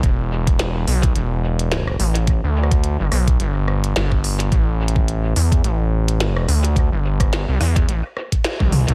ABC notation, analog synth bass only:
X:1
M:4/4
L:1/16
Q:"Swing 16ths" 1/4=107
K:Em
V:1 name="Analog synth bass" clef=bass
E,,,6 B,,,2 E,,,6 A,,,2- | A,,, D,,4 G,,, B,,,2 G,,,4 G,,,4 | A,,,6 E,,2 A,,,6 D,,2- | D,, G,,,4 C,, E,,2 A,,, z4 C,,2 C,, |]